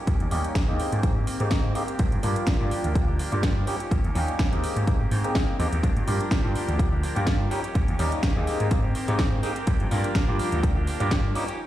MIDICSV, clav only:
0, 0, Header, 1, 2, 480
1, 0, Start_track
1, 0, Tempo, 480000
1, 75, Time_signature, 4, 2, 24, 8
1, 11667, End_track
2, 0, Start_track
2, 0, Title_t, "Clav"
2, 0, Program_c, 0, 7
2, 310, Note_on_c, 0, 55, 82
2, 312, Note_on_c, 0, 58, 73
2, 314, Note_on_c, 0, 61, 76
2, 316, Note_on_c, 0, 63, 74
2, 317, Note_on_c, 0, 67, 91
2, 650, Note_off_c, 0, 55, 0
2, 651, Note_off_c, 0, 58, 0
2, 652, Note_off_c, 0, 61, 0
2, 654, Note_off_c, 0, 63, 0
2, 654, Note_off_c, 0, 67, 0
2, 679, Note_on_c, 0, 56, 75
2, 681, Note_on_c, 0, 58, 71
2, 682, Note_on_c, 0, 60, 71
2, 685, Note_on_c, 0, 63, 73
2, 687, Note_on_c, 0, 67, 83
2, 1006, Note_off_c, 0, 56, 0
2, 1007, Note_off_c, 0, 58, 0
2, 1007, Note_off_c, 0, 60, 0
2, 1009, Note_off_c, 0, 63, 0
2, 1010, Note_off_c, 0, 67, 0
2, 1032, Note_on_c, 0, 56, 81
2, 1033, Note_on_c, 0, 58, 71
2, 1034, Note_on_c, 0, 60, 77
2, 1037, Note_on_c, 0, 63, 73
2, 1039, Note_on_c, 0, 67, 88
2, 1160, Note_off_c, 0, 56, 0
2, 1160, Note_off_c, 0, 58, 0
2, 1161, Note_off_c, 0, 60, 0
2, 1162, Note_off_c, 0, 63, 0
2, 1163, Note_off_c, 0, 67, 0
2, 1401, Note_on_c, 0, 56, 73
2, 1402, Note_on_c, 0, 58, 68
2, 1404, Note_on_c, 0, 60, 71
2, 1406, Note_on_c, 0, 63, 72
2, 1409, Note_on_c, 0, 67, 88
2, 1727, Note_off_c, 0, 56, 0
2, 1727, Note_off_c, 0, 58, 0
2, 1728, Note_off_c, 0, 60, 0
2, 1729, Note_off_c, 0, 63, 0
2, 1731, Note_off_c, 0, 67, 0
2, 1750, Note_on_c, 0, 56, 80
2, 1752, Note_on_c, 0, 58, 74
2, 1754, Note_on_c, 0, 60, 75
2, 1756, Note_on_c, 0, 63, 77
2, 1758, Note_on_c, 0, 67, 85
2, 1831, Note_off_c, 0, 56, 0
2, 1832, Note_off_c, 0, 58, 0
2, 1833, Note_off_c, 0, 60, 0
2, 1834, Note_off_c, 0, 63, 0
2, 1836, Note_off_c, 0, 67, 0
2, 2230, Note_on_c, 0, 55, 85
2, 2232, Note_on_c, 0, 58, 79
2, 2234, Note_on_c, 0, 62, 77
2, 2236, Note_on_c, 0, 65, 75
2, 2239, Note_on_c, 0, 67, 88
2, 2570, Note_off_c, 0, 55, 0
2, 2572, Note_off_c, 0, 58, 0
2, 2572, Note_off_c, 0, 62, 0
2, 2574, Note_off_c, 0, 65, 0
2, 2575, Note_off_c, 0, 67, 0
2, 2597, Note_on_c, 0, 55, 81
2, 2599, Note_on_c, 0, 58, 70
2, 2602, Note_on_c, 0, 62, 73
2, 2604, Note_on_c, 0, 65, 72
2, 2606, Note_on_c, 0, 67, 87
2, 2925, Note_off_c, 0, 55, 0
2, 2926, Note_off_c, 0, 58, 0
2, 2927, Note_off_c, 0, 62, 0
2, 2928, Note_off_c, 0, 65, 0
2, 2929, Note_off_c, 0, 67, 0
2, 2950, Note_on_c, 0, 55, 80
2, 2952, Note_on_c, 0, 58, 74
2, 2954, Note_on_c, 0, 62, 76
2, 2956, Note_on_c, 0, 65, 72
2, 2958, Note_on_c, 0, 67, 89
2, 3079, Note_off_c, 0, 55, 0
2, 3080, Note_off_c, 0, 58, 0
2, 3081, Note_off_c, 0, 62, 0
2, 3082, Note_off_c, 0, 65, 0
2, 3082, Note_off_c, 0, 67, 0
2, 3319, Note_on_c, 0, 55, 75
2, 3320, Note_on_c, 0, 58, 70
2, 3322, Note_on_c, 0, 62, 70
2, 3325, Note_on_c, 0, 65, 74
2, 3326, Note_on_c, 0, 67, 84
2, 3646, Note_off_c, 0, 55, 0
2, 3646, Note_off_c, 0, 58, 0
2, 3647, Note_off_c, 0, 62, 0
2, 3649, Note_off_c, 0, 65, 0
2, 3649, Note_off_c, 0, 67, 0
2, 3668, Note_on_c, 0, 55, 80
2, 3670, Note_on_c, 0, 58, 72
2, 3672, Note_on_c, 0, 61, 76
2, 3675, Note_on_c, 0, 63, 71
2, 3675, Note_on_c, 0, 67, 88
2, 3750, Note_off_c, 0, 55, 0
2, 3751, Note_off_c, 0, 58, 0
2, 3752, Note_off_c, 0, 61, 0
2, 3754, Note_off_c, 0, 63, 0
2, 3754, Note_off_c, 0, 67, 0
2, 4149, Note_on_c, 0, 55, 83
2, 4152, Note_on_c, 0, 58, 75
2, 4153, Note_on_c, 0, 61, 78
2, 4157, Note_on_c, 0, 63, 75
2, 4158, Note_on_c, 0, 67, 92
2, 4490, Note_off_c, 0, 55, 0
2, 4492, Note_off_c, 0, 58, 0
2, 4492, Note_off_c, 0, 61, 0
2, 4494, Note_off_c, 0, 63, 0
2, 4494, Note_off_c, 0, 67, 0
2, 4517, Note_on_c, 0, 56, 79
2, 4520, Note_on_c, 0, 58, 71
2, 4520, Note_on_c, 0, 60, 70
2, 4524, Note_on_c, 0, 63, 72
2, 4526, Note_on_c, 0, 67, 89
2, 4845, Note_off_c, 0, 56, 0
2, 4846, Note_off_c, 0, 58, 0
2, 4846, Note_off_c, 0, 60, 0
2, 4848, Note_off_c, 0, 63, 0
2, 4849, Note_off_c, 0, 67, 0
2, 4870, Note_on_c, 0, 56, 77
2, 4872, Note_on_c, 0, 58, 72
2, 4873, Note_on_c, 0, 60, 75
2, 4875, Note_on_c, 0, 63, 73
2, 4878, Note_on_c, 0, 67, 86
2, 4998, Note_off_c, 0, 56, 0
2, 5000, Note_off_c, 0, 58, 0
2, 5000, Note_off_c, 0, 60, 0
2, 5001, Note_off_c, 0, 63, 0
2, 5003, Note_off_c, 0, 67, 0
2, 5239, Note_on_c, 0, 56, 78
2, 5241, Note_on_c, 0, 58, 71
2, 5242, Note_on_c, 0, 60, 71
2, 5245, Note_on_c, 0, 63, 70
2, 5246, Note_on_c, 0, 67, 81
2, 5566, Note_off_c, 0, 56, 0
2, 5567, Note_off_c, 0, 58, 0
2, 5568, Note_off_c, 0, 60, 0
2, 5569, Note_off_c, 0, 63, 0
2, 5569, Note_off_c, 0, 67, 0
2, 5591, Note_on_c, 0, 56, 78
2, 5593, Note_on_c, 0, 58, 77
2, 5595, Note_on_c, 0, 60, 74
2, 5597, Note_on_c, 0, 63, 71
2, 5599, Note_on_c, 0, 67, 91
2, 5672, Note_off_c, 0, 56, 0
2, 5673, Note_off_c, 0, 58, 0
2, 5674, Note_off_c, 0, 60, 0
2, 5675, Note_off_c, 0, 63, 0
2, 5676, Note_off_c, 0, 67, 0
2, 6071, Note_on_c, 0, 55, 83
2, 6073, Note_on_c, 0, 58, 78
2, 6075, Note_on_c, 0, 62, 76
2, 6077, Note_on_c, 0, 65, 76
2, 6079, Note_on_c, 0, 67, 91
2, 6411, Note_off_c, 0, 55, 0
2, 6412, Note_off_c, 0, 58, 0
2, 6413, Note_off_c, 0, 62, 0
2, 6414, Note_off_c, 0, 65, 0
2, 6415, Note_off_c, 0, 67, 0
2, 6437, Note_on_c, 0, 55, 78
2, 6438, Note_on_c, 0, 58, 68
2, 6441, Note_on_c, 0, 62, 72
2, 6444, Note_on_c, 0, 65, 69
2, 6444, Note_on_c, 0, 67, 87
2, 6765, Note_off_c, 0, 55, 0
2, 6765, Note_off_c, 0, 58, 0
2, 6767, Note_off_c, 0, 62, 0
2, 6768, Note_off_c, 0, 65, 0
2, 6768, Note_off_c, 0, 67, 0
2, 6788, Note_on_c, 0, 55, 84
2, 6791, Note_on_c, 0, 58, 73
2, 6792, Note_on_c, 0, 62, 74
2, 6794, Note_on_c, 0, 65, 70
2, 6796, Note_on_c, 0, 67, 90
2, 6918, Note_off_c, 0, 55, 0
2, 6919, Note_off_c, 0, 58, 0
2, 6920, Note_off_c, 0, 62, 0
2, 6920, Note_off_c, 0, 65, 0
2, 6921, Note_off_c, 0, 67, 0
2, 7156, Note_on_c, 0, 55, 79
2, 7158, Note_on_c, 0, 58, 70
2, 7160, Note_on_c, 0, 62, 68
2, 7162, Note_on_c, 0, 65, 70
2, 7164, Note_on_c, 0, 67, 84
2, 7484, Note_off_c, 0, 55, 0
2, 7485, Note_off_c, 0, 58, 0
2, 7486, Note_off_c, 0, 62, 0
2, 7487, Note_off_c, 0, 65, 0
2, 7488, Note_off_c, 0, 67, 0
2, 7509, Note_on_c, 0, 55, 81
2, 7511, Note_on_c, 0, 58, 73
2, 7513, Note_on_c, 0, 61, 72
2, 7515, Note_on_c, 0, 63, 73
2, 7517, Note_on_c, 0, 67, 93
2, 7591, Note_off_c, 0, 55, 0
2, 7592, Note_off_c, 0, 58, 0
2, 7593, Note_off_c, 0, 61, 0
2, 7594, Note_off_c, 0, 63, 0
2, 7595, Note_off_c, 0, 67, 0
2, 7989, Note_on_c, 0, 55, 87
2, 7992, Note_on_c, 0, 58, 76
2, 7993, Note_on_c, 0, 61, 77
2, 7996, Note_on_c, 0, 63, 77
2, 7997, Note_on_c, 0, 67, 91
2, 8330, Note_off_c, 0, 55, 0
2, 8331, Note_off_c, 0, 58, 0
2, 8332, Note_off_c, 0, 61, 0
2, 8334, Note_off_c, 0, 63, 0
2, 8334, Note_off_c, 0, 67, 0
2, 8361, Note_on_c, 0, 56, 80
2, 8363, Note_on_c, 0, 58, 74
2, 8364, Note_on_c, 0, 60, 73
2, 8367, Note_on_c, 0, 63, 73
2, 8368, Note_on_c, 0, 67, 86
2, 8687, Note_off_c, 0, 56, 0
2, 8688, Note_off_c, 0, 58, 0
2, 8688, Note_off_c, 0, 60, 0
2, 8690, Note_off_c, 0, 63, 0
2, 8690, Note_off_c, 0, 67, 0
2, 8708, Note_on_c, 0, 56, 81
2, 8710, Note_on_c, 0, 58, 77
2, 8712, Note_on_c, 0, 60, 75
2, 8714, Note_on_c, 0, 63, 75
2, 8717, Note_on_c, 0, 67, 92
2, 8838, Note_off_c, 0, 56, 0
2, 8838, Note_off_c, 0, 58, 0
2, 8840, Note_off_c, 0, 60, 0
2, 8841, Note_off_c, 0, 63, 0
2, 8842, Note_off_c, 0, 67, 0
2, 9081, Note_on_c, 0, 56, 77
2, 9081, Note_on_c, 0, 58, 73
2, 9084, Note_on_c, 0, 60, 72
2, 9086, Note_on_c, 0, 63, 72
2, 9088, Note_on_c, 0, 67, 86
2, 9407, Note_off_c, 0, 56, 0
2, 9407, Note_off_c, 0, 58, 0
2, 9408, Note_off_c, 0, 60, 0
2, 9409, Note_off_c, 0, 63, 0
2, 9410, Note_off_c, 0, 67, 0
2, 9431, Note_on_c, 0, 56, 81
2, 9433, Note_on_c, 0, 58, 74
2, 9436, Note_on_c, 0, 60, 77
2, 9437, Note_on_c, 0, 63, 77
2, 9439, Note_on_c, 0, 67, 89
2, 9512, Note_off_c, 0, 56, 0
2, 9513, Note_off_c, 0, 58, 0
2, 9514, Note_off_c, 0, 60, 0
2, 9515, Note_off_c, 0, 63, 0
2, 9516, Note_off_c, 0, 67, 0
2, 9911, Note_on_c, 0, 55, 83
2, 9914, Note_on_c, 0, 58, 77
2, 9915, Note_on_c, 0, 62, 80
2, 9917, Note_on_c, 0, 65, 75
2, 9918, Note_on_c, 0, 67, 94
2, 10251, Note_off_c, 0, 55, 0
2, 10252, Note_off_c, 0, 58, 0
2, 10253, Note_off_c, 0, 62, 0
2, 10254, Note_off_c, 0, 65, 0
2, 10254, Note_off_c, 0, 67, 0
2, 10278, Note_on_c, 0, 55, 77
2, 10280, Note_on_c, 0, 58, 72
2, 10283, Note_on_c, 0, 62, 72
2, 10285, Note_on_c, 0, 65, 71
2, 10288, Note_on_c, 0, 67, 89
2, 10605, Note_off_c, 0, 55, 0
2, 10606, Note_off_c, 0, 58, 0
2, 10608, Note_off_c, 0, 62, 0
2, 10609, Note_off_c, 0, 65, 0
2, 10610, Note_off_c, 0, 67, 0
2, 10629, Note_on_c, 0, 55, 81
2, 10631, Note_on_c, 0, 58, 73
2, 10634, Note_on_c, 0, 62, 75
2, 10636, Note_on_c, 0, 65, 74
2, 10637, Note_on_c, 0, 67, 87
2, 10758, Note_off_c, 0, 55, 0
2, 10759, Note_off_c, 0, 58, 0
2, 10761, Note_off_c, 0, 62, 0
2, 10761, Note_off_c, 0, 65, 0
2, 10762, Note_off_c, 0, 67, 0
2, 10998, Note_on_c, 0, 55, 81
2, 11001, Note_on_c, 0, 58, 72
2, 11002, Note_on_c, 0, 62, 73
2, 11004, Note_on_c, 0, 65, 71
2, 11006, Note_on_c, 0, 67, 83
2, 11325, Note_off_c, 0, 55, 0
2, 11327, Note_off_c, 0, 58, 0
2, 11327, Note_off_c, 0, 62, 0
2, 11328, Note_off_c, 0, 65, 0
2, 11329, Note_off_c, 0, 67, 0
2, 11350, Note_on_c, 0, 55, 85
2, 11353, Note_on_c, 0, 58, 78
2, 11355, Note_on_c, 0, 61, 75
2, 11356, Note_on_c, 0, 63, 77
2, 11358, Note_on_c, 0, 67, 87
2, 11431, Note_off_c, 0, 55, 0
2, 11433, Note_off_c, 0, 58, 0
2, 11434, Note_off_c, 0, 61, 0
2, 11434, Note_off_c, 0, 63, 0
2, 11436, Note_off_c, 0, 67, 0
2, 11667, End_track
0, 0, End_of_file